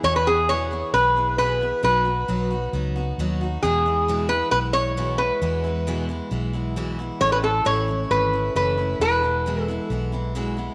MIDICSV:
0, 0, Header, 1, 4, 480
1, 0, Start_track
1, 0, Key_signature, 4, "major"
1, 0, Tempo, 448430
1, 40, Time_signature, 4, 2, 24, 8
1, 11500, End_track
2, 0, Start_track
2, 0, Title_t, "Resonator guitar played with a steel bar"
2, 0, Program_c, 0, 25
2, 44, Note_on_c, 0, 73, 103
2, 166, Note_off_c, 0, 73, 0
2, 170, Note_on_c, 0, 71, 77
2, 288, Note_off_c, 0, 71, 0
2, 290, Note_on_c, 0, 68, 80
2, 524, Note_on_c, 0, 73, 91
2, 525, Note_off_c, 0, 68, 0
2, 999, Note_off_c, 0, 73, 0
2, 1004, Note_on_c, 0, 71, 85
2, 1468, Note_off_c, 0, 71, 0
2, 1481, Note_on_c, 0, 71, 86
2, 1960, Note_off_c, 0, 71, 0
2, 1973, Note_on_c, 0, 71, 78
2, 2884, Note_off_c, 0, 71, 0
2, 3880, Note_on_c, 0, 68, 92
2, 4590, Note_on_c, 0, 71, 84
2, 4622, Note_off_c, 0, 68, 0
2, 4818, Note_off_c, 0, 71, 0
2, 4831, Note_on_c, 0, 71, 94
2, 4897, Note_off_c, 0, 71, 0
2, 5066, Note_on_c, 0, 73, 89
2, 5546, Note_on_c, 0, 71, 76
2, 5567, Note_off_c, 0, 73, 0
2, 6470, Note_off_c, 0, 71, 0
2, 7715, Note_on_c, 0, 73, 105
2, 7833, Note_off_c, 0, 73, 0
2, 7837, Note_on_c, 0, 71, 78
2, 7890, Note_off_c, 0, 71, 0
2, 7960, Note_on_c, 0, 69, 80
2, 8183, Note_off_c, 0, 69, 0
2, 8200, Note_on_c, 0, 73, 89
2, 8679, Note_on_c, 0, 71, 83
2, 8693, Note_off_c, 0, 73, 0
2, 9153, Note_off_c, 0, 71, 0
2, 9166, Note_on_c, 0, 71, 78
2, 9608, Note_off_c, 0, 71, 0
2, 9649, Note_on_c, 0, 71, 89
2, 10302, Note_off_c, 0, 71, 0
2, 10302, Note_on_c, 0, 69, 89
2, 10560, Note_off_c, 0, 69, 0
2, 11500, End_track
3, 0, Start_track
3, 0, Title_t, "Steel-string acoustic guitar"
3, 0, Program_c, 1, 25
3, 37, Note_on_c, 1, 40, 63
3, 45, Note_on_c, 1, 52, 73
3, 47, Note_on_c, 1, 47, 64
3, 47, Note_on_c, 1, 59, 73
3, 53, Note_on_c, 1, 68, 75
3, 54, Note_on_c, 1, 64, 81
3, 267, Note_off_c, 1, 68, 0
3, 278, Note_off_c, 1, 40, 0
3, 279, Note_off_c, 1, 64, 0
3, 280, Note_on_c, 1, 68, 45
3, 282, Note_off_c, 1, 52, 0
3, 283, Note_off_c, 1, 47, 0
3, 284, Note_off_c, 1, 59, 0
3, 292, Note_on_c, 1, 64, 45
3, 297, Note_on_c, 1, 59, 42
3, 304, Note_on_c, 1, 52, 46
3, 518, Note_off_c, 1, 52, 0
3, 520, Note_off_c, 1, 68, 0
3, 521, Note_off_c, 1, 64, 0
3, 522, Note_off_c, 1, 59, 0
3, 524, Note_on_c, 1, 40, 77
3, 524, Note_on_c, 1, 47, 78
3, 530, Note_on_c, 1, 52, 78
3, 534, Note_on_c, 1, 64, 73
3, 535, Note_on_c, 1, 59, 78
3, 539, Note_on_c, 1, 68, 84
3, 743, Note_off_c, 1, 68, 0
3, 756, Note_on_c, 1, 68, 47
3, 757, Note_off_c, 1, 64, 0
3, 762, Note_off_c, 1, 40, 0
3, 762, Note_off_c, 1, 47, 0
3, 765, Note_off_c, 1, 52, 0
3, 765, Note_off_c, 1, 59, 0
3, 770, Note_on_c, 1, 64, 48
3, 778, Note_on_c, 1, 59, 45
3, 783, Note_on_c, 1, 52, 44
3, 989, Note_off_c, 1, 52, 0
3, 997, Note_off_c, 1, 59, 0
3, 998, Note_off_c, 1, 68, 0
3, 1002, Note_on_c, 1, 52, 56
3, 1005, Note_off_c, 1, 64, 0
3, 1009, Note_on_c, 1, 59, 52
3, 1017, Note_on_c, 1, 64, 57
3, 1026, Note_on_c, 1, 68, 63
3, 1231, Note_off_c, 1, 68, 0
3, 1239, Note_off_c, 1, 64, 0
3, 1241, Note_off_c, 1, 52, 0
3, 1244, Note_on_c, 1, 68, 50
3, 1245, Note_off_c, 1, 59, 0
3, 1252, Note_on_c, 1, 64, 44
3, 1259, Note_on_c, 1, 59, 42
3, 1271, Note_on_c, 1, 52, 36
3, 1478, Note_off_c, 1, 52, 0
3, 1481, Note_on_c, 1, 40, 70
3, 1482, Note_off_c, 1, 68, 0
3, 1484, Note_off_c, 1, 59, 0
3, 1486, Note_off_c, 1, 64, 0
3, 1488, Note_on_c, 1, 47, 81
3, 1491, Note_on_c, 1, 52, 68
3, 1497, Note_on_c, 1, 59, 77
3, 1503, Note_on_c, 1, 64, 78
3, 1504, Note_on_c, 1, 68, 78
3, 1709, Note_off_c, 1, 68, 0
3, 1721, Note_off_c, 1, 40, 0
3, 1722, Note_off_c, 1, 64, 0
3, 1722, Note_on_c, 1, 68, 47
3, 1724, Note_off_c, 1, 47, 0
3, 1726, Note_off_c, 1, 52, 0
3, 1728, Note_off_c, 1, 59, 0
3, 1735, Note_on_c, 1, 64, 39
3, 1740, Note_on_c, 1, 59, 42
3, 1749, Note_on_c, 1, 52, 40
3, 1950, Note_off_c, 1, 59, 0
3, 1955, Note_on_c, 1, 47, 80
3, 1956, Note_off_c, 1, 52, 0
3, 1960, Note_on_c, 1, 54, 77
3, 1961, Note_off_c, 1, 68, 0
3, 1963, Note_on_c, 1, 59, 67
3, 1968, Note_off_c, 1, 64, 0
3, 1974, Note_on_c, 1, 63, 80
3, 1975, Note_on_c, 1, 66, 87
3, 2181, Note_off_c, 1, 66, 0
3, 2191, Note_off_c, 1, 63, 0
3, 2194, Note_on_c, 1, 66, 51
3, 2198, Note_off_c, 1, 47, 0
3, 2200, Note_off_c, 1, 54, 0
3, 2202, Note_off_c, 1, 59, 0
3, 2204, Note_on_c, 1, 63, 47
3, 2215, Note_on_c, 1, 59, 36
3, 2437, Note_off_c, 1, 66, 0
3, 2440, Note_off_c, 1, 59, 0
3, 2442, Note_off_c, 1, 63, 0
3, 2442, Note_on_c, 1, 47, 73
3, 2446, Note_on_c, 1, 54, 80
3, 2453, Note_on_c, 1, 59, 83
3, 2457, Note_on_c, 1, 63, 73
3, 2461, Note_on_c, 1, 66, 76
3, 2668, Note_off_c, 1, 66, 0
3, 2681, Note_off_c, 1, 47, 0
3, 2681, Note_on_c, 1, 66, 60
3, 2682, Note_off_c, 1, 63, 0
3, 2683, Note_off_c, 1, 54, 0
3, 2687, Note_off_c, 1, 59, 0
3, 2695, Note_on_c, 1, 63, 51
3, 2706, Note_on_c, 1, 59, 49
3, 2916, Note_off_c, 1, 59, 0
3, 2921, Note_off_c, 1, 66, 0
3, 2925, Note_off_c, 1, 63, 0
3, 2925, Note_on_c, 1, 54, 61
3, 2929, Note_on_c, 1, 59, 58
3, 2938, Note_on_c, 1, 63, 62
3, 2945, Note_on_c, 1, 66, 70
3, 3151, Note_off_c, 1, 66, 0
3, 3163, Note_off_c, 1, 54, 0
3, 3164, Note_on_c, 1, 66, 55
3, 3165, Note_off_c, 1, 59, 0
3, 3167, Note_off_c, 1, 63, 0
3, 3180, Note_on_c, 1, 63, 55
3, 3190, Note_on_c, 1, 59, 45
3, 3402, Note_off_c, 1, 66, 0
3, 3410, Note_off_c, 1, 63, 0
3, 3411, Note_off_c, 1, 59, 0
3, 3416, Note_on_c, 1, 47, 81
3, 3422, Note_on_c, 1, 54, 80
3, 3424, Note_on_c, 1, 59, 84
3, 3427, Note_on_c, 1, 63, 89
3, 3432, Note_on_c, 1, 66, 90
3, 3637, Note_off_c, 1, 66, 0
3, 3648, Note_off_c, 1, 47, 0
3, 3650, Note_on_c, 1, 66, 52
3, 3651, Note_off_c, 1, 54, 0
3, 3652, Note_off_c, 1, 59, 0
3, 3654, Note_off_c, 1, 63, 0
3, 3669, Note_on_c, 1, 63, 47
3, 3679, Note_on_c, 1, 59, 44
3, 3885, Note_off_c, 1, 66, 0
3, 3890, Note_on_c, 1, 40, 66
3, 3895, Note_off_c, 1, 59, 0
3, 3895, Note_off_c, 1, 63, 0
3, 3897, Note_on_c, 1, 47, 75
3, 3899, Note_on_c, 1, 52, 77
3, 3905, Note_on_c, 1, 56, 75
3, 3908, Note_on_c, 1, 59, 79
3, 3910, Note_on_c, 1, 64, 74
3, 4117, Note_off_c, 1, 64, 0
3, 4125, Note_off_c, 1, 40, 0
3, 4129, Note_off_c, 1, 47, 0
3, 4129, Note_on_c, 1, 64, 58
3, 4130, Note_off_c, 1, 52, 0
3, 4130, Note_off_c, 1, 59, 0
3, 4133, Note_off_c, 1, 56, 0
3, 4143, Note_on_c, 1, 59, 48
3, 4148, Note_on_c, 1, 56, 42
3, 4155, Note_on_c, 1, 52, 38
3, 4365, Note_off_c, 1, 64, 0
3, 4367, Note_off_c, 1, 52, 0
3, 4369, Note_off_c, 1, 56, 0
3, 4370, Note_on_c, 1, 40, 83
3, 4372, Note_off_c, 1, 59, 0
3, 4378, Note_on_c, 1, 47, 86
3, 4380, Note_on_c, 1, 52, 75
3, 4382, Note_on_c, 1, 56, 81
3, 4384, Note_on_c, 1, 59, 88
3, 4389, Note_on_c, 1, 64, 83
3, 4592, Note_off_c, 1, 64, 0
3, 4605, Note_off_c, 1, 40, 0
3, 4605, Note_on_c, 1, 64, 51
3, 4607, Note_off_c, 1, 59, 0
3, 4609, Note_off_c, 1, 47, 0
3, 4610, Note_off_c, 1, 52, 0
3, 4611, Note_off_c, 1, 56, 0
3, 4620, Note_on_c, 1, 59, 49
3, 4623, Note_on_c, 1, 56, 47
3, 4634, Note_on_c, 1, 52, 43
3, 4823, Note_off_c, 1, 52, 0
3, 4836, Note_on_c, 1, 52, 51
3, 4839, Note_off_c, 1, 56, 0
3, 4842, Note_off_c, 1, 59, 0
3, 4843, Note_off_c, 1, 64, 0
3, 4852, Note_on_c, 1, 56, 57
3, 4855, Note_on_c, 1, 59, 53
3, 4864, Note_on_c, 1, 64, 58
3, 5063, Note_off_c, 1, 64, 0
3, 5076, Note_on_c, 1, 64, 46
3, 5078, Note_off_c, 1, 52, 0
3, 5078, Note_off_c, 1, 59, 0
3, 5081, Note_off_c, 1, 56, 0
3, 5091, Note_on_c, 1, 59, 46
3, 5094, Note_on_c, 1, 56, 40
3, 5103, Note_on_c, 1, 52, 39
3, 5313, Note_off_c, 1, 56, 0
3, 5314, Note_off_c, 1, 52, 0
3, 5318, Note_off_c, 1, 64, 0
3, 5319, Note_off_c, 1, 59, 0
3, 5319, Note_on_c, 1, 40, 63
3, 5325, Note_on_c, 1, 47, 81
3, 5325, Note_on_c, 1, 56, 81
3, 5327, Note_on_c, 1, 52, 72
3, 5332, Note_on_c, 1, 59, 81
3, 5336, Note_on_c, 1, 64, 83
3, 5536, Note_off_c, 1, 64, 0
3, 5548, Note_on_c, 1, 64, 45
3, 5549, Note_off_c, 1, 59, 0
3, 5560, Note_off_c, 1, 40, 0
3, 5561, Note_on_c, 1, 59, 44
3, 5563, Note_off_c, 1, 47, 0
3, 5563, Note_off_c, 1, 52, 0
3, 5563, Note_off_c, 1, 56, 0
3, 5574, Note_on_c, 1, 56, 40
3, 5580, Note_on_c, 1, 52, 33
3, 5791, Note_off_c, 1, 52, 0
3, 5794, Note_off_c, 1, 56, 0
3, 5794, Note_off_c, 1, 64, 0
3, 5797, Note_off_c, 1, 59, 0
3, 5797, Note_on_c, 1, 40, 70
3, 5799, Note_on_c, 1, 47, 65
3, 5803, Note_on_c, 1, 52, 75
3, 5807, Note_on_c, 1, 56, 84
3, 5810, Note_on_c, 1, 59, 77
3, 5813, Note_on_c, 1, 64, 80
3, 6022, Note_off_c, 1, 64, 0
3, 6033, Note_off_c, 1, 59, 0
3, 6035, Note_on_c, 1, 64, 54
3, 6039, Note_off_c, 1, 40, 0
3, 6040, Note_off_c, 1, 47, 0
3, 6041, Note_off_c, 1, 56, 0
3, 6042, Note_off_c, 1, 52, 0
3, 6046, Note_on_c, 1, 59, 49
3, 6054, Note_on_c, 1, 56, 44
3, 6062, Note_on_c, 1, 52, 43
3, 6278, Note_off_c, 1, 56, 0
3, 6278, Note_off_c, 1, 64, 0
3, 6279, Note_off_c, 1, 52, 0
3, 6281, Note_on_c, 1, 40, 80
3, 6283, Note_off_c, 1, 59, 0
3, 6285, Note_on_c, 1, 47, 80
3, 6291, Note_on_c, 1, 52, 96
3, 6291, Note_on_c, 1, 56, 89
3, 6297, Note_on_c, 1, 59, 86
3, 6301, Note_on_c, 1, 64, 87
3, 6503, Note_off_c, 1, 64, 0
3, 6515, Note_off_c, 1, 59, 0
3, 6516, Note_on_c, 1, 64, 56
3, 6520, Note_off_c, 1, 40, 0
3, 6522, Note_off_c, 1, 47, 0
3, 6525, Note_off_c, 1, 56, 0
3, 6526, Note_off_c, 1, 52, 0
3, 6528, Note_on_c, 1, 59, 53
3, 6539, Note_on_c, 1, 56, 48
3, 6542, Note_on_c, 1, 52, 41
3, 6740, Note_off_c, 1, 52, 0
3, 6748, Note_off_c, 1, 56, 0
3, 6753, Note_on_c, 1, 52, 65
3, 6756, Note_off_c, 1, 59, 0
3, 6758, Note_off_c, 1, 64, 0
3, 6760, Note_on_c, 1, 56, 60
3, 6768, Note_on_c, 1, 59, 66
3, 6775, Note_on_c, 1, 64, 65
3, 6981, Note_off_c, 1, 64, 0
3, 6990, Note_off_c, 1, 59, 0
3, 6993, Note_on_c, 1, 64, 57
3, 6996, Note_off_c, 1, 52, 0
3, 7000, Note_off_c, 1, 56, 0
3, 7003, Note_on_c, 1, 59, 48
3, 7011, Note_on_c, 1, 56, 48
3, 7020, Note_on_c, 1, 52, 41
3, 7233, Note_off_c, 1, 52, 0
3, 7233, Note_off_c, 1, 56, 0
3, 7236, Note_off_c, 1, 64, 0
3, 7238, Note_on_c, 1, 40, 71
3, 7240, Note_on_c, 1, 47, 79
3, 7241, Note_off_c, 1, 59, 0
3, 7246, Note_on_c, 1, 52, 84
3, 7246, Note_on_c, 1, 56, 79
3, 7252, Note_on_c, 1, 59, 88
3, 7255, Note_on_c, 1, 64, 84
3, 7466, Note_off_c, 1, 64, 0
3, 7479, Note_off_c, 1, 40, 0
3, 7479, Note_off_c, 1, 59, 0
3, 7479, Note_on_c, 1, 64, 54
3, 7480, Note_off_c, 1, 47, 0
3, 7483, Note_off_c, 1, 52, 0
3, 7483, Note_off_c, 1, 56, 0
3, 7492, Note_on_c, 1, 59, 47
3, 7499, Note_on_c, 1, 56, 43
3, 7509, Note_on_c, 1, 52, 45
3, 7705, Note_off_c, 1, 52, 0
3, 7711, Note_on_c, 1, 45, 66
3, 7718, Note_off_c, 1, 56, 0
3, 7718, Note_on_c, 1, 52, 72
3, 7719, Note_off_c, 1, 64, 0
3, 7720, Note_off_c, 1, 59, 0
3, 7723, Note_on_c, 1, 57, 75
3, 7724, Note_on_c, 1, 61, 88
3, 7734, Note_on_c, 1, 64, 74
3, 7940, Note_off_c, 1, 64, 0
3, 7952, Note_off_c, 1, 61, 0
3, 7953, Note_on_c, 1, 64, 50
3, 7955, Note_off_c, 1, 45, 0
3, 7958, Note_off_c, 1, 52, 0
3, 7961, Note_off_c, 1, 57, 0
3, 7965, Note_on_c, 1, 61, 44
3, 7977, Note_on_c, 1, 57, 41
3, 8185, Note_off_c, 1, 57, 0
3, 8186, Note_on_c, 1, 45, 77
3, 8190, Note_off_c, 1, 61, 0
3, 8192, Note_on_c, 1, 52, 79
3, 8196, Note_off_c, 1, 64, 0
3, 8198, Note_on_c, 1, 57, 74
3, 8203, Note_on_c, 1, 61, 83
3, 8208, Note_on_c, 1, 64, 84
3, 8419, Note_off_c, 1, 64, 0
3, 8432, Note_on_c, 1, 64, 49
3, 8433, Note_off_c, 1, 45, 0
3, 8434, Note_off_c, 1, 61, 0
3, 8436, Note_off_c, 1, 52, 0
3, 8438, Note_off_c, 1, 57, 0
3, 8447, Note_on_c, 1, 61, 44
3, 8463, Note_on_c, 1, 57, 44
3, 8675, Note_off_c, 1, 57, 0
3, 8675, Note_off_c, 1, 64, 0
3, 8677, Note_on_c, 1, 52, 58
3, 8683, Note_off_c, 1, 61, 0
3, 8688, Note_on_c, 1, 57, 60
3, 8698, Note_on_c, 1, 61, 59
3, 8703, Note_on_c, 1, 64, 58
3, 8907, Note_off_c, 1, 64, 0
3, 8918, Note_off_c, 1, 52, 0
3, 8920, Note_on_c, 1, 64, 52
3, 8922, Note_off_c, 1, 61, 0
3, 8923, Note_off_c, 1, 57, 0
3, 8935, Note_on_c, 1, 61, 38
3, 8944, Note_on_c, 1, 57, 34
3, 9153, Note_off_c, 1, 57, 0
3, 9158, Note_on_c, 1, 45, 66
3, 9159, Note_off_c, 1, 64, 0
3, 9160, Note_off_c, 1, 61, 0
3, 9163, Note_on_c, 1, 52, 73
3, 9166, Note_on_c, 1, 57, 74
3, 9173, Note_on_c, 1, 61, 72
3, 9174, Note_on_c, 1, 64, 76
3, 9381, Note_off_c, 1, 64, 0
3, 9394, Note_on_c, 1, 64, 53
3, 9396, Note_off_c, 1, 61, 0
3, 9398, Note_off_c, 1, 45, 0
3, 9400, Note_off_c, 1, 52, 0
3, 9402, Note_off_c, 1, 57, 0
3, 9409, Note_on_c, 1, 61, 43
3, 9420, Note_on_c, 1, 57, 36
3, 9636, Note_off_c, 1, 64, 0
3, 9643, Note_off_c, 1, 61, 0
3, 9646, Note_on_c, 1, 40, 78
3, 9649, Note_off_c, 1, 57, 0
3, 9649, Note_on_c, 1, 47, 72
3, 9650, Note_on_c, 1, 52, 74
3, 9656, Note_on_c, 1, 56, 80
3, 9660, Note_on_c, 1, 59, 77
3, 9663, Note_on_c, 1, 64, 89
3, 9868, Note_off_c, 1, 64, 0
3, 9879, Note_off_c, 1, 59, 0
3, 9881, Note_on_c, 1, 64, 54
3, 9882, Note_off_c, 1, 40, 0
3, 9883, Note_off_c, 1, 47, 0
3, 9884, Note_off_c, 1, 52, 0
3, 9887, Note_off_c, 1, 56, 0
3, 9892, Note_on_c, 1, 59, 48
3, 9901, Note_on_c, 1, 56, 45
3, 9907, Note_on_c, 1, 52, 42
3, 10119, Note_off_c, 1, 64, 0
3, 10125, Note_off_c, 1, 59, 0
3, 10126, Note_off_c, 1, 52, 0
3, 10126, Note_on_c, 1, 40, 69
3, 10129, Note_off_c, 1, 56, 0
3, 10133, Note_on_c, 1, 47, 77
3, 10139, Note_on_c, 1, 52, 71
3, 10141, Note_on_c, 1, 56, 78
3, 10142, Note_on_c, 1, 59, 85
3, 10147, Note_on_c, 1, 64, 83
3, 10351, Note_off_c, 1, 64, 0
3, 10361, Note_off_c, 1, 40, 0
3, 10361, Note_off_c, 1, 59, 0
3, 10364, Note_on_c, 1, 64, 59
3, 10365, Note_off_c, 1, 47, 0
3, 10368, Note_off_c, 1, 52, 0
3, 10369, Note_off_c, 1, 56, 0
3, 10374, Note_on_c, 1, 59, 55
3, 10386, Note_on_c, 1, 56, 47
3, 10393, Note_on_c, 1, 52, 50
3, 10585, Note_off_c, 1, 52, 0
3, 10597, Note_off_c, 1, 56, 0
3, 10598, Note_on_c, 1, 52, 67
3, 10600, Note_off_c, 1, 64, 0
3, 10605, Note_off_c, 1, 59, 0
3, 10610, Note_on_c, 1, 56, 61
3, 10620, Note_on_c, 1, 59, 59
3, 10628, Note_on_c, 1, 64, 67
3, 10822, Note_off_c, 1, 64, 0
3, 10832, Note_off_c, 1, 59, 0
3, 10835, Note_on_c, 1, 64, 53
3, 10837, Note_off_c, 1, 52, 0
3, 10843, Note_off_c, 1, 56, 0
3, 10845, Note_on_c, 1, 59, 54
3, 10855, Note_on_c, 1, 56, 47
3, 10863, Note_on_c, 1, 52, 47
3, 11074, Note_off_c, 1, 52, 0
3, 11076, Note_off_c, 1, 56, 0
3, 11076, Note_off_c, 1, 64, 0
3, 11078, Note_on_c, 1, 40, 84
3, 11080, Note_off_c, 1, 59, 0
3, 11082, Note_on_c, 1, 47, 72
3, 11087, Note_on_c, 1, 52, 84
3, 11089, Note_on_c, 1, 56, 90
3, 11093, Note_on_c, 1, 59, 86
3, 11098, Note_on_c, 1, 64, 86
3, 11299, Note_off_c, 1, 64, 0
3, 11312, Note_off_c, 1, 59, 0
3, 11312, Note_on_c, 1, 64, 51
3, 11317, Note_off_c, 1, 40, 0
3, 11318, Note_off_c, 1, 56, 0
3, 11319, Note_off_c, 1, 47, 0
3, 11322, Note_off_c, 1, 52, 0
3, 11325, Note_on_c, 1, 59, 53
3, 11331, Note_on_c, 1, 56, 49
3, 11339, Note_on_c, 1, 52, 39
3, 11500, Note_off_c, 1, 52, 0
3, 11500, Note_off_c, 1, 56, 0
3, 11500, Note_off_c, 1, 59, 0
3, 11500, Note_off_c, 1, 64, 0
3, 11500, End_track
4, 0, Start_track
4, 0, Title_t, "Fingered electric bass"
4, 0, Program_c, 2, 33
4, 38, Note_on_c, 2, 40, 81
4, 875, Note_off_c, 2, 40, 0
4, 999, Note_on_c, 2, 35, 78
4, 1836, Note_off_c, 2, 35, 0
4, 1964, Note_on_c, 2, 35, 80
4, 2381, Note_off_c, 2, 35, 0
4, 2447, Note_on_c, 2, 35, 67
4, 2852, Note_off_c, 2, 35, 0
4, 2923, Note_on_c, 2, 37, 85
4, 3330, Note_off_c, 2, 37, 0
4, 3405, Note_on_c, 2, 39, 82
4, 3811, Note_off_c, 2, 39, 0
4, 3885, Note_on_c, 2, 40, 82
4, 4719, Note_off_c, 2, 40, 0
4, 4837, Note_on_c, 2, 35, 75
4, 5675, Note_off_c, 2, 35, 0
4, 5797, Note_on_c, 2, 40, 86
4, 6634, Note_off_c, 2, 40, 0
4, 6756, Note_on_c, 2, 35, 72
4, 7593, Note_off_c, 2, 35, 0
4, 7717, Note_on_c, 2, 33, 82
4, 8136, Note_off_c, 2, 33, 0
4, 8197, Note_on_c, 2, 33, 70
4, 8605, Note_off_c, 2, 33, 0
4, 8675, Note_on_c, 2, 32, 80
4, 9084, Note_off_c, 2, 32, 0
4, 9154, Note_on_c, 2, 30, 78
4, 9564, Note_off_c, 2, 30, 0
4, 9630, Note_on_c, 2, 28, 81
4, 10469, Note_off_c, 2, 28, 0
4, 10596, Note_on_c, 2, 35, 76
4, 11432, Note_off_c, 2, 35, 0
4, 11500, End_track
0, 0, End_of_file